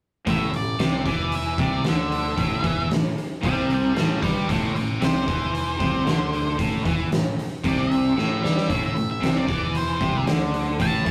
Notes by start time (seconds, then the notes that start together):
0.27 A1 A2 E5, kick, open hi-hat
0.53 A1 A2 D5, open hi-hat
0.80 C2 C3, snare, open hi-hat
1.06 E2 E3, kick, open hi-hat
1.32 E5, open hi-hat
1.58 C2 C3 D5, kick, open hi-hat
1.84 D2 D3 E5, snare, open hi-hat
2.12 open hi-hat
2.37 A1 A2, kick, open hi-hat
2.62 E2 E3, kick, open hi-hat
2.90 A1 A2, snare, open hi-hat
3.18 open hi-hat
3.42 C2 C3 D5 G5, kick, open hi-hat
3.70 D5 G5, open hi-hat
3.94 A1 A2 D5 G5, snare, open hi-hat
4.21 G2 G3 C5 E5, kick, open hi-hat
4.48 A1 A2 C5 E5, kick, open hi-hat
4.75 A1 A2 C5 E5, open hi-hat
5.00 C2 C3, snare, open hi-hat
5.04 C5
5.27 E2 E3, kick, open hi-hat
5.55 open hi-hat
5.78 C2 C3, kick, open hi-hat
6.06 D2 D3, snare, open hi-hat
6.33 open hi-hat
6.58 A1 A2, kick, open hi-hat
6.85 E2 E3, kick, open hi-hat
7.11 A1 A2, snare, open hi-hat
7.39 open hi-hat
7.64 C2 C3, kick, open hi-hat
7.68 D5
7.81 E5
7.92 open hi-hat
8.17 A1 A2, snare
8.42 G2 G3, snare
8.57 snare
8.67 A1 A2, kick, open hi-hat
8.86 E5
8.96 A1 A2, open hi-hat
9.11 E5
9.21 C2 C3, snare, open hi-hat
9.38 D5
9.47 E2 E3, kick, open hi-hat
9.75 C5, open hi-hat
10.00 C2 C3, kick, open hi-hat
10.27 D2 D3, snare, open hi-hat
10.54 open hi-hat
10.79 A1 A2 A5, kick, open hi-hat
11.06 E2 E3, kick, open hi-hat